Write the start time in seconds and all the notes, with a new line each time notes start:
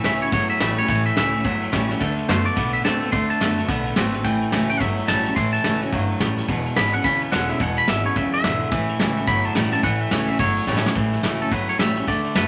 Already playing: A2
0.04 C#2 A2 E3 A3 C#4 F#4 E5, snare, ride
0.20 C#4 F#4 C#5, ride
0.32 G1 E2 A2 F#3 C#5, kick, ride
0.49 E5, ride
0.60 A1 A2 E3 G3 A3 C#4 F#4 E5, snare, ride
0.77 C#4 F#4 C#5, ride
0.88 A1 A2 E3 C#5, kick, ride
1.06 E5, ride
1.16 C#2 A2 E3 A3 C#4 F#4 E5, snare, ride
1.33 C#4 F#4, ride
1.45 G1 E2 A2 F#3, kick, ride
1.62 ride
1.72 A1 A2 E3 G3 A3 C#4 F#4, kick, snare, ride
1.89 C#4 F#4, snare, ride
2.00 D2 D3 A3, kick, ride
2.18 ride
2.28 F#2 D3 A3 B3 F#4 C5, snare, ride
2.45 B3 F#4 D5, ride
2.56 B1 A2 D3 B3, kick, ride
2.73 E5, ride
2.84 D2 D3 A3 B3 C4 F#4 A5, snare, ride
3.02 B3 F#4, ride
3.12 D2 D3 A3 C6, kick, ride
3.30 A5, ride
3.40 F#2 D3 A3 B3 F#4, snare, ride
3.58 B3 F#4, ride
3.68 B1 A2 D3 B3, kick, ride
3.85 ride
3.96 G#1 D3 A3 B3 C4 F#4, snare, ride
4.14 B3 F#4, snare, ride
4.24 A1 A2 E3 G5, kick, ride
4.41 ride
4.52 C#2 A2 E3 A3 C#4 F#4, snare, ride
4.69 C#4 F#4 G5, ride
4.80 G1 E2 A2 F#3 E5, kick, ride
4.97 ride
5.08 A1 A2 E3 G3 A3 C#4 F#4 A5, snare, ride
5.26 C#4 F#4, snare, ride
5.36 A1 A2 E3 C6, kick, ride
5.53 A5, ride
5.64 C#2 A2 E3 A3 C#4 F#4, snare, ride
5.82 C#4 F#4, ride
5.92 G1 G2 A2 F#3, kick, ride
6.10 ride
6.20 A1 F#2 A2 G3, kick, snare, ride
6.38 snare, ride
6.49 E1 E2 B2, kick, ride
6.66 ride
6.76 G#1 E2 B2 E3 G#3 C#4 E4 B5, snare, ride
6.93 C#4 E4 F#5, ride
7.04 D2 E2 B2 C#3 B5, kick, ride
7.21 ride
7.31 E1 E2 D3 E3 G#3 C#4 E4 F#5, snare, ride
7.49 C#4 E4 E5, snare, ride
7.60 E1 E2 B2 F#5, kick, ride
7.77 B5, ride
7.88 G#1 E2 B2 E3 G#3 C#4 E4 E5, snare, ride
8.05 C#4 E4 C#5, ride
8.16 D2 E2 F#2 C#3 E5, kick, ride
8.33 E5, ride
8.44 E1 E2 G#2 D3, snare, ride
8.61 ride
8.72 A1 A2 E3, kick, ride
8.89 ride
8.99 C#2 A2 E3 A3 C#4 F#4, snare, ride
9.17 C#4 F#4, ride
9.27 G1 E2 A2 F#3 B5, kick, ride
9.44 A5, ride
9.55 A1 A2 E3 G3 A3 C#4 F#4 F#5, snare, ride
9.72 C#4 F#4 A5, ride
9.83 A1 A2 E3 F#5, kick, ride
10.00 E5, ride
10.11 C#2 A2 E3 A3 C#4 F#4 C#5, snare, ride
10.28 C#4 F#4 E5, ride
10.39 G1 E2 A2 F#3 C#5, kick, ride
10.56 ride
10.67 A1 A2 E3 G3 A3 C#4 F#4, kick, snare
10.77 snare
10.85 C#4 F#4, snare
10.95 A1 A2 E3, kick, ride
11.13 snare, ride
11.23 C#2 A2 E3 A3 C#4 F#4, snare, ride
11.41 C#4 F#4 A4, ride
11.51 G1 E2 A2 F#3 B4, kick, ride
11.69 C#5, snare, ride
11.79 A1 A2 E3 G3 A3 C#4 F#4 E5, snare, ride
11.96 C#4 F#4, ride
12.07 D2 D3 A3 D5, kick, ride
12.24 ride
12.34 F#2 D3 A3 B3 F#4 B4, snare, ride